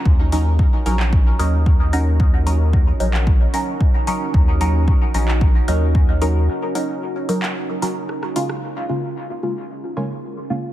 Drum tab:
HH |--o---o---o---o-|--o---o---o---o-|--o---o---o---o-|--o---o---o---o-|
CP |-------x--------|-------x--------|-------x--------|-------x--------|
SD |----------------|----------------|----------------|------------rr-r|
BD |o---o---o---o---|o---o---o---o---|o---o---o---o---|----------------|

HH |----------------|
CP |----------------|
SD |----------------|
BD |----------------|